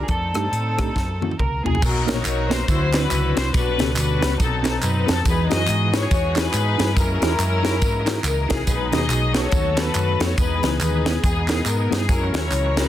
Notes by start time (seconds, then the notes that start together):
Already playing: G3 D5
0.03 G#4
0.07 F2 D#3 A3 C4 D#4 A4, kick, closed hi-hat
0.34 G2 A3 D4 D#4 G4, cross-stick, closed hi-hat
0.52 A2, closed hi-hat
0.77 A3 D4 D#4 G4, kick, cross-stick, closed hi-hat
0.96 F#2 C#3 E3 F#3 A#3, kick, snare
1.22 A#3 C#4 E4 F#4, high tom
1.31 high tom
1.38 C#2 A#4, kick, mid tom
1.64 C2 A#3 C#4 E4 F#4 G#4, floor tom
1.75 floor tom
1.81 B1 B2 F#3 A#3 B3 D#4 F#4 A#4, kick, crash, tambourine
2.06 A#1 A#3 B3 D#4 F#4 A#4 C#5, snare, closed hi-hat, tambourine
2.25 B1, clap, closed hi-hat, tambourine
2.50 A#3 B3 D#4 F#4 B4 C5, snare, closed hi-hat, tambourine
2.67 D2 D3 F#3 C4 D4 E4 F#4 A4 C5, kick, closed hi-hat, tambourine
2.75 B4
2.93 C4 D4 E4 F#4 B4, snare, clap, closed hi-hat, tambourine
3.11 C#2, clap, closed hi-hat, tambourine
3.35 C4 D4 E4 F#4 B4 C5, snare, closed hi-hat, tambourine
3.53 B1 B2 G3 A3 D4 F#4 A4 B4 C#5, kick, closed hi-hat, tambourine
3.59 B3
3.78 C#2 B3 C#4 F#4 G4 A4, snare, closed hi-hat, tambourine
3.96 D2 D4 F#4 B4, clap, closed hi-hat, tambourine
4.21 C#2 B3 C#4 F#4 G4 B4, snare, closed hi-hat, tambourine
4.38 B1 B2 F#3 C4 D#4 G4 A4, kick, closed hi-hat, tambourine
4.47 A4
4.63 C4 D#4 F#4 A4 B4, snare, clap, closed hi-hat, tambourine
4.82 F#2 B4, clap, closed hi-hat, tambourine
5.06 F2 C4 D#4 F#4 A4 B4, snare, closed hi-hat, tambourine
5.24 E2 E3 F#3 B3 D#4 F#4 G#4 B4, kick, closed hi-hat, tambourine
5.31 G#3
5.49 F#2 D#4 E4 F#4 G#4 B4 D#5, snare, closed hi-hat, tambourine
5.67 G#2, clap, closed hi-hat, tambourine
5.93 D#4 E4 F#4 G#4 B4 C#5, snare, closed hi-hat, tambourine
6.11 E2, kick, closed hi-hat, tambourine
6.36 D#4 E4 F#4 G#4 B4 C#5, snare, clap, closed hi-hat, tambourine
6.53 G#2, clap, closed hi-hat, tambourine
6.78 G2 D#4 E4 F#4 G#4 B4, snare, closed hi-hat, tambourine
6.96 F#2 E3 G#3 A#3 C#4 E4 F4 A#4 D#5, kick, closed hi-hat, tambourine
7.02 F#4
7.21 E2 D#4 E4 F#4 G#4 A#4, snare, closed hi-hat, tambourine
7.39 F#2, clap, closed hi-hat, tambourine
7.63 D#4 E4 F#4 G#4 C#5, snare, closed hi-hat, tambourine
7.82 G#2, kick, closed hi-hat, tambourine
8.06 D#4 E4 F#4 G#4 A#4, snare, clap, closed hi-hat, tambourine
8.23 C#2 A#4, clap, closed hi-hat, tambourine
8.49 C2 D#4 E4 F#4 G#4 A#4, kick, snare, closed hi-hat, tambourine
8.67 B1 B2 F#3 G#3 B3 D#4 G#4 B4, kick, closed hi-hat, tambourine
8.92 D#2 B3 D#4 F#4 G#4 B4 D#5, snare, closed hi-hat, tambourine
9.09 B1, clap, closed hi-hat, tambourine
9.34 B3 D#4 F#4 G#4 A4 B4 C#5, snare, closed hi-hat, tambourine
9.52 D#2 D#3 F#3 A3 B3 D#4 A4, kick, closed hi-hat, tambourine
9.77 B3 D#4 F#4 A4 B4, snare, clap, closed hi-hat, tambourine
9.94 F#2, clap, closed hi-hat, tambourine
10.20 F2 B3 D#4 F#4 A4 B4 C#5, snare, closed hi-hat, tambourine
10.38 E2 B2 E3 G#3 B3 D#4 G#4 B4, kick, closed hi-hat, tambourine
10.63 C#2 B3 D#4 E4 G#4 B4, snare, closed hi-hat, tambourine
10.80 D#2 D#4 G#4 B4, clap, closed hi-hat, tambourine
11.06 B3 D#4 E4 G#4 B4, snare, closed hi-hat, tambourine
11.24 E2 B3 D#4 G#4, kick, closed hi-hat, tambourine
11.48 B3 D#4 E4 G#4 A#4, snare, clap, closed hi-hat, tambourine
11.65 G#2 A#4, clap, closed hi-hat, tambourine
11.90 G2 B3 D#4 E4 G#4 B4, snare, closed hi-hat, tambourine
12.08 F#2 E3 F#3 G#3 C#4 E4 F#4 A#4, kick, closed hi-hat, tambourine
12.33 D#2 C#4 E4 F#4 G#4 A#4 C#5, snare, closed hi-hat, tambourine
12.51 C#2, clap, closed hi-hat, tambourine
12.77 C#4 E4 F#4 G#4 A#4 B4, snare, closed hi-hat, tambourine